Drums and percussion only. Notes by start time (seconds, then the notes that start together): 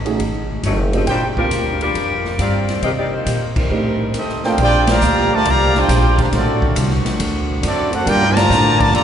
0.06 ride
0.20 kick, ride
0.63 kick, hi-hat pedal, ride
0.93 ride
1.07 kick, ride
1.37 kick
1.51 kick, hi-hat pedal, ride
1.81 ride
1.95 kick, ride
2.25 snare
2.39 kick, hi-hat pedal, ride
2.68 snare, ride
2.82 kick, ride
3.26 kick, hi-hat pedal, ride
3.56 kick, crash
4.14 kick, hi-hat pedal, ride
4.29 snare
4.43 snare
4.58 kick, ride
4.87 snare, ride
5.01 hi-hat pedal
5.45 kick, ride
5.75 snare
5.89 kick, snare, hi-hat pedal, ride
6.18 kick, ride
6.32 kick, snare, ride
6.62 kick
6.76 kick, hi-hat pedal, ride
6.90 snare
7.05 snare, ride
7.20 kick, ride
7.63 kick, hi-hat pedal, ride
7.93 ride
8.07 kick, ride
8.37 snare, ride
8.51 hi-hat pedal
8.80 kick, ride
8.95 ride